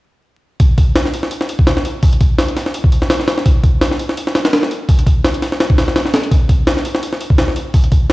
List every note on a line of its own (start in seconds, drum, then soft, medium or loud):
0.60 kick loud
0.60 open hi-hat medium
0.78 kick medium
0.78 open hi-hat medium
0.95 snare loud
0.95 open hi-hat medium
1.05 snare soft
1.14 open hi-hat medium
1.23 snare medium
1.31 open hi-hat medium
1.41 snare soft
1.49 open hi-hat medium
1.59 kick medium
1.67 snare loud
1.67 open hi-hat medium
1.77 snare soft
1.85 open hi-hat medium
2.03 kick loud
2.03 open hi-hat medium
2.13 closed hi-hat soft
2.21 kick medium
2.21 open hi-hat medium
2.38 snare loud
2.38 open hi-hat medium
2.48 closed hi-hat soft
2.57 snare soft
2.57 open hi-hat medium
2.66 snare medium
2.74 open hi-hat medium
2.84 kick medium
2.92 open hi-hat medium
3.02 snare soft
3.10 snare loud
3.10 open hi-hat medium
3.20 snare soft
3.28 snare loud
3.28 open hi-hat medium
3.38 snare soft
3.46 kick loud
3.46 open hi-hat medium
3.64 kick medium
3.64 open hi-hat medium
3.81 snare loud
3.81 open hi-hat medium
3.91 snare soft
3.99 open hi-hat medium
4.09 snare medium
4.17 open hi-hat medium
4.27 snare soft
4.35 snare loud
4.35 open hi-hat medium
4.45 snare loud
4.45 open hi-hat medium
4.53 snare loud
4.53 open hi-hat medium
4.63 snare soft
4.71 open hi-hat medium
4.89 kick loud
4.89 open hi-hat medium
4.99 closed hi-hat soft
5.07 kick medium
5.07 open hi-hat medium
5.24 snare loud
5.24 open hi-hat medium
5.34 closed hi-hat soft
5.42 snare soft
5.42 open hi-hat medium
5.52 snare medium
5.60 snare loud
5.60 open hi-hat medium
5.70 kick loud
5.78 snare loud
5.78 open hi-hat medium
5.88 snare soft
5.96 snare loud
5.96 open hi-hat medium
6.05 snare soft
6.14 snare loud
6.14 open hi-hat medium
6.23 closed hi-hat soft
6.31 kick loud
6.31 open hi-hat medium
6.49 kick medium
6.49 open hi-hat medium
6.67 snare loud
6.67 open hi-hat medium
6.77 snare soft
6.85 open hi-hat medium
6.95 snare medium
7.03 open hi-hat medium
7.13 snare soft
7.21 open hi-hat medium
7.30 kick medium
7.38 snare loud
7.38 open hi-hat medium
7.48 snare soft
7.56 open hi-hat medium
7.74 kick loud
7.74 open hi-hat medium
7.84 closed hi-hat soft
7.92 kick medium
7.92 open hi-hat medium
8.10 snare loud
8.10 open hi-hat medium